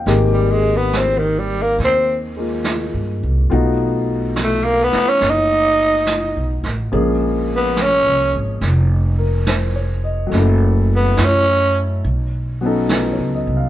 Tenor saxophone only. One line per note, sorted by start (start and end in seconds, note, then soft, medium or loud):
0.33 0.53 G3 medium
0.52 0.78 G#3 medium
0.77 0.99 B3 medium
0.98 1.20 C4 medium
1.18 1.41 D#3 medium
1.39 1.64 G3 medium
1.62 1.77 A#3 medium
1.84 2.18 C4 medium
4.44 4.66 A3 medium
4.64 4.85 A#3 medium
4.84 5.10 B3 medium
5.09 5.31 C#4 medium
5.30 6.69 D#4 medium
7.56 7.84 B3 medium
7.82 8.37 C#4 medium
10.96 11.26 B3 medium
11.25 11.80 C#4 medium